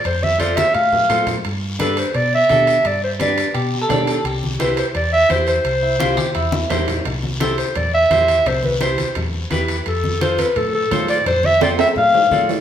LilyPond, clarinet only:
\new Staff \with { instrumentName = "Clarinet" } { \time 4/4 \key c \major \tempo 4 = 171 c''8 e''8 d''8 e''8 f''4. r8 | r4 a'8 c''8 d''8 e''4. | d''8 c''8 d''4 r2 | r4 b'8 c''8 d''8 e''8 c''8 c''8~ |
c''2. r4 | r4 a'8 c''8 d''8 e''4. | c''8 b'8 c''4 r2 | a'4 c''8 b'8 a'8 a'4 d''8 |
c''8 e''8 d''8 e''8 f''4. r8 | }